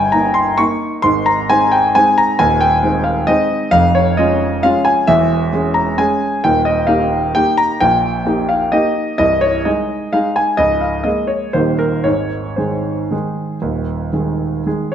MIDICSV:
0, 0, Header, 1, 2, 480
1, 0, Start_track
1, 0, Tempo, 450450
1, 1114, Time_signature, 3, 2, 24, 8
1, 7341, Tempo, 463679
1, 11661, Tempo, 499168
1, 12621, Tempo, 533333
1, 13581, Tempo, 513699
1, 15283, End_track
2, 0, Start_track
2, 0, Title_t, "Grand piano"
2, 0, Program_c, 0, 0
2, 0, Control_c, 0, 64, 127
2, 0, Note_on_c, 0, 31, 51
2, 0, Note_on_c, 0, 43, 55
2, 0, Note_on_c, 0, 79, 85
2, 0, Note_on_c, 0, 80, 76
2, 122, Note_off_c, 0, 43, 0
2, 123, Note_off_c, 0, 31, 0
2, 129, Note_on_c, 0, 82, 74
2, 131, Note_off_c, 0, 80, 0
2, 143, Note_on_c, 0, 58, 35
2, 147, Note_on_c, 0, 63, 42
2, 363, Note_on_c, 0, 84, 75
2, 381, Note_off_c, 0, 82, 0
2, 593, Note_off_c, 0, 58, 0
2, 595, Note_off_c, 0, 63, 0
2, 614, Note_on_c, 0, 85, 83
2, 623, Note_off_c, 0, 84, 0
2, 624, Note_on_c, 0, 58, 42
2, 628, Note_on_c, 0, 63, 41
2, 647, Control_c, 0, 64, 0
2, 657, Note_off_c, 0, 79, 0
2, 1066, Note_off_c, 0, 58, 0
2, 1068, Note_off_c, 0, 63, 0
2, 1091, Note_on_c, 0, 84, 89
2, 1103, Note_off_c, 0, 85, 0
2, 1104, Note_on_c, 0, 44, 58
2, 1105, Note_on_c, 0, 32, 50
2, 1285, Control_c, 0, 64, 127
2, 1335, Note_off_c, 0, 84, 0
2, 1341, Note_on_c, 0, 82, 78
2, 1567, Note_off_c, 0, 44, 0
2, 1568, Note_off_c, 0, 32, 0
2, 1584, Note_off_c, 0, 82, 0
2, 1593, Note_on_c, 0, 80, 84
2, 1595, Note_on_c, 0, 56, 40
2, 1600, Note_on_c, 0, 63, 40
2, 1604, Note_on_c, 0, 60, 40
2, 1828, Note_on_c, 0, 79, 74
2, 1835, Note_off_c, 0, 80, 0
2, 2037, Note_off_c, 0, 56, 0
2, 2040, Note_off_c, 0, 63, 0
2, 2042, Note_off_c, 0, 60, 0
2, 2074, Note_off_c, 0, 79, 0
2, 2079, Note_on_c, 0, 80, 83
2, 2083, Note_on_c, 0, 56, 44
2, 2087, Control_c, 0, 64, 0
2, 2089, Note_on_c, 0, 60, 45
2, 2095, Note_on_c, 0, 63, 44
2, 2317, Note_off_c, 0, 80, 0
2, 2320, Note_on_c, 0, 82, 80
2, 2508, Note_off_c, 0, 56, 0
2, 2511, Note_off_c, 0, 60, 0
2, 2514, Note_off_c, 0, 63, 0
2, 2546, Note_on_c, 0, 80, 88
2, 2549, Note_off_c, 0, 82, 0
2, 2554, Note_on_c, 0, 39, 60
2, 2557, Note_on_c, 0, 27, 51
2, 2735, Control_c, 0, 64, 127
2, 2776, Note_off_c, 0, 80, 0
2, 2777, Note_on_c, 0, 79, 81
2, 3001, Note_off_c, 0, 39, 0
2, 3002, Note_off_c, 0, 27, 0
2, 3014, Note_on_c, 0, 56, 39
2, 3022, Note_on_c, 0, 60, 40
2, 3023, Note_on_c, 0, 63, 47
2, 3237, Note_on_c, 0, 77, 66
2, 3252, Note_off_c, 0, 79, 0
2, 3455, Note_off_c, 0, 56, 0
2, 3459, Note_off_c, 0, 60, 0
2, 3460, Note_off_c, 0, 63, 0
2, 3484, Note_on_c, 0, 75, 79
2, 3489, Note_off_c, 0, 77, 0
2, 3496, Note_on_c, 0, 56, 44
2, 3497, Note_on_c, 0, 60, 45
2, 3508, Control_c, 0, 64, 0
2, 3508, Note_on_c, 0, 63, 50
2, 3927, Note_off_c, 0, 56, 0
2, 3928, Note_off_c, 0, 60, 0
2, 3933, Note_off_c, 0, 63, 0
2, 3956, Note_on_c, 0, 77, 96
2, 3960, Note_on_c, 0, 29, 53
2, 3964, Note_off_c, 0, 75, 0
2, 3967, Note_on_c, 0, 41, 61
2, 4182, Control_c, 0, 64, 127
2, 4198, Note_off_c, 0, 77, 0
2, 4207, Note_on_c, 0, 73, 76
2, 4429, Note_off_c, 0, 29, 0
2, 4433, Note_off_c, 0, 41, 0
2, 4447, Note_on_c, 0, 75, 72
2, 4450, Note_off_c, 0, 73, 0
2, 4458, Note_on_c, 0, 56, 38
2, 4465, Note_on_c, 0, 61, 43
2, 4465, Note_on_c, 0, 65, 44
2, 4902, Note_off_c, 0, 56, 0
2, 4905, Note_off_c, 0, 61, 0
2, 4905, Note_off_c, 0, 65, 0
2, 4934, Note_on_c, 0, 77, 88
2, 4938, Note_off_c, 0, 75, 0
2, 4944, Note_on_c, 0, 56, 41
2, 4946, Note_on_c, 0, 61, 48
2, 4949, Control_c, 0, 64, 0
2, 4954, Note_on_c, 0, 65, 49
2, 5164, Note_on_c, 0, 80, 76
2, 5176, Note_off_c, 0, 77, 0
2, 5373, Note_off_c, 0, 56, 0
2, 5374, Note_off_c, 0, 61, 0
2, 5378, Note_off_c, 0, 65, 0
2, 5405, Note_off_c, 0, 80, 0
2, 5407, Note_on_c, 0, 76, 91
2, 5413, Note_on_c, 0, 28, 58
2, 5414, Note_on_c, 0, 40, 66
2, 5611, Control_c, 0, 64, 127
2, 5873, Note_off_c, 0, 28, 0
2, 5873, Note_off_c, 0, 40, 0
2, 5889, Note_on_c, 0, 56, 39
2, 5897, Note_on_c, 0, 61, 38
2, 5899, Note_on_c, 0, 68, 39
2, 6119, Note_on_c, 0, 82, 70
2, 6127, Note_off_c, 0, 76, 0
2, 6338, Note_off_c, 0, 56, 0
2, 6341, Note_off_c, 0, 61, 0
2, 6342, Note_off_c, 0, 68, 0
2, 6373, Note_off_c, 0, 82, 0
2, 6373, Note_on_c, 0, 80, 75
2, 6374, Note_on_c, 0, 56, 46
2, 6379, Note_on_c, 0, 61, 49
2, 6387, Note_on_c, 0, 68, 49
2, 6390, Control_c, 0, 64, 0
2, 6817, Note_off_c, 0, 56, 0
2, 6820, Note_off_c, 0, 61, 0
2, 6824, Note_off_c, 0, 68, 0
2, 6859, Note_off_c, 0, 80, 0
2, 6861, Note_on_c, 0, 79, 86
2, 6871, Note_on_c, 0, 39, 54
2, 6873, Note_on_c, 0, 27, 52
2, 7069, Control_c, 0, 64, 127
2, 7088, Note_on_c, 0, 75, 71
2, 7097, Note_off_c, 0, 79, 0
2, 7319, Note_on_c, 0, 77, 71
2, 7327, Note_on_c, 0, 58, 38
2, 7329, Note_off_c, 0, 39, 0
2, 7330, Note_off_c, 0, 27, 0
2, 7334, Note_on_c, 0, 63, 43
2, 7335, Note_off_c, 0, 75, 0
2, 7342, Note_on_c, 0, 67, 48
2, 7777, Note_off_c, 0, 58, 0
2, 7780, Note_off_c, 0, 63, 0
2, 7784, Note_off_c, 0, 67, 0
2, 7815, Note_off_c, 0, 77, 0
2, 7815, Note_on_c, 0, 79, 88
2, 7823, Note_on_c, 0, 58, 41
2, 7831, Note_on_c, 0, 63, 44
2, 7838, Note_on_c, 0, 67, 50
2, 7840, Control_c, 0, 64, 0
2, 8051, Note_on_c, 0, 82, 85
2, 8061, Note_off_c, 0, 79, 0
2, 8255, Note_off_c, 0, 58, 0
2, 8259, Note_off_c, 0, 63, 0
2, 8263, Note_off_c, 0, 67, 0
2, 8289, Note_on_c, 0, 79, 88
2, 8291, Note_off_c, 0, 82, 0
2, 8298, Note_on_c, 0, 34, 47
2, 8299, Note_on_c, 0, 46, 57
2, 8507, Control_c, 0, 64, 127
2, 8752, Note_off_c, 0, 34, 0
2, 8753, Note_off_c, 0, 46, 0
2, 8755, Note_on_c, 0, 58, 37
2, 8765, Note_on_c, 0, 63, 41
2, 8767, Note_on_c, 0, 67, 42
2, 8995, Note_on_c, 0, 77, 65
2, 9003, Note_off_c, 0, 79, 0
2, 9206, Note_off_c, 0, 58, 0
2, 9211, Note_off_c, 0, 63, 0
2, 9212, Note_off_c, 0, 67, 0
2, 9235, Note_on_c, 0, 75, 76
2, 9241, Note_on_c, 0, 58, 39
2, 9247, Note_off_c, 0, 77, 0
2, 9250, Note_on_c, 0, 63, 41
2, 9252, Note_on_c, 0, 67, 45
2, 9262, Control_c, 0, 64, 0
2, 9686, Note_off_c, 0, 58, 0
2, 9690, Note_off_c, 0, 63, 0
2, 9691, Note_off_c, 0, 67, 0
2, 9699, Note_off_c, 0, 75, 0
2, 9714, Note_on_c, 0, 75, 82
2, 9720, Note_on_c, 0, 24, 51
2, 9724, Note_on_c, 0, 36, 53
2, 9949, Control_c, 0, 64, 127
2, 9952, Note_on_c, 0, 73, 76
2, 9960, Note_off_c, 0, 75, 0
2, 10193, Note_off_c, 0, 24, 0
2, 10195, Note_off_c, 0, 36, 0
2, 10201, Note_on_c, 0, 75, 61
2, 10204, Note_on_c, 0, 63, 37
2, 10205, Note_off_c, 0, 73, 0
2, 10206, Note_on_c, 0, 56, 35
2, 10211, Note_on_c, 0, 68, 40
2, 10229, Control_c, 0, 64, 0
2, 10666, Note_off_c, 0, 63, 0
2, 10667, Note_off_c, 0, 56, 0
2, 10669, Note_off_c, 0, 68, 0
2, 10692, Note_on_c, 0, 77, 70
2, 10698, Note_on_c, 0, 56, 38
2, 10703, Note_on_c, 0, 68, 41
2, 10705, Note_off_c, 0, 75, 0
2, 10706, Note_on_c, 0, 63, 42
2, 10933, Note_on_c, 0, 80, 71
2, 10943, Note_off_c, 0, 77, 0
2, 11137, Note_off_c, 0, 56, 0
2, 11139, Note_off_c, 0, 68, 0
2, 11141, Note_off_c, 0, 63, 0
2, 11155, Note_on_c, 0, 75, 81
2, 11164, Note_on_c, 0, 37, 53
2, 11168, Note_on_c, 0, 25, 42
2, 11175, Note_off_c, 0, 80, 0
2, 11393, Control_c, 0, 64, 127
2, 11400, Note_on_c, 0, 77, 54
2, 11403, Note_off_c, 0, 75, 0
2, 11634, Note_off_c, 0, 37, 0
2, 11634, Note_on_c, 0, 75, 63
2, 11636, Note_off_c, 0, 25, 0
2, 11640, Note_on_c, 0, 56, 30
2, 11644, Note_on_c, 0, 58, 30
2, 11650, Note_off_c, 0, 77, 0
2, 11650, Note_on_c, 0, 68, 39
2, 11672, Control_c, 0, 64, 0
2, 11865, Note_on_c, 0, 73, 57
2, 11879, Note_off_c, 0, 75, 0
2, 12083, Note_off_c, 0, 56, 0
2, 12085, Note_off_c, 0, 58, 0
2, 12087, Note_off_c, 0, 68, 0
2, 12114, Note_on_c, 0, 72, 71
2, 12117, Note_off_c, 0, 73, 0
2, 12122, Note_on_c, 0, 51, 33
2, 12125, Note_on_c, 0, 27, 41
2, 12126, Note_on_c, 0, 39, 47
2, 12129, Note_on_c, 0, 58, 34
2, 12137, Note_on_c, 0, 67, 32
2, 12320, Control_c, 0, 64, 127
2, 12357, Note_on_c, 0, 70, 55
2, 12367, Note_off_c, 0, 72, 0
2, 12576, Note_off_c, 0, 51, 0
2, 12580, Note_off_c, 0, 58, 0
2, 12584, Note_off_c, 0, 67, 0
2, 12599, Note_on_c, 0, 73, 66
2, 12602, Note_off_c, 0, 27, 0
2, 12602, Note_off_c, 0, 39, 0
2, 12610, Note_off_c, 0, 70, 0
2, 12611, Note_on_c, 0, 32, 39
2, 12613, Note_on_c, 0, 44, 50
2, 12633, Control_c, 0, 64, 0
2, 12816, Control_c, 0, 64, 127
2, 13073, Note_on_c, 0, 72, 46
2, 13074, Note_off_c, 0, 32, 0
2, 13075, Note_off_c, 0, 44, 0
2, 13083, Note_off_c, 0, 73, 0
2, 13086, Note_on_c, 0, 56, 31
2, 13089, Note_on_c, 0, 51, 29
2, 13089, Note_on_c, 0, 68, 36
2, 13541, Note_off_c, 0, 56, 0
2, 13542, Note_off_c, 0, 51, 0
2, 13542, Note_off_c, 0, 68, 0
2, 13565, Note_on_c, 0, 51, 37
2, 13574, Note_on_c, 0, 56, 37
2, 13576, Note_on_c, 0, 68, 35
2, 13595, Control_c, 0, 64, 0
2, 14012, Note_off_c, 0, 51, 0
2, 14017, Note_off_c, 0, 56, 0
2, 14018, Note_off_c, 0, 68, 0
2, 14040, Note_on_c, 0, 39, 41
2, 14043, Note_on_c, 0, 27, 39
2, 14233, Control_c, 0, 64, 127
2, 14498, Note_off_c, 0, 39, 0
2, 14500, Note_off_c, 0, 27, 0
2, 14517, Note_on_c, 0, 51, 34
2, 14523, Note_on_c, 0, 56, 29
2, 14523, Note_on_c, 0, 68, 35
2, 14975, Note_off_c, 0, 51, 0
2, 14978, Note_off_c, 0, 56, 0
2, 14978, Note_off_c, 0, 68, 0
2, 15016, Note_on_c, 0, 51, 31
2, 15018, Note_on_c, 0, 56, 35
2, 15023, Note_on_c, 0, 68, 40
2, 15027, Control_c, 0, 64, 0
2, 15250, Note_off_c, 0, 72, 0
2, 15253, Note_on_c, 0, 73, 56
2, 15283, Note_off_c, 0, 51, 0
2, 15283, Note_off_c, 0, 56, 0
2, 15283, Note_off_c, 0, 68, 0
2, 15283, Note_off_c, 0, 73, 0
2, 15283, End_track
0, 0, End_of_file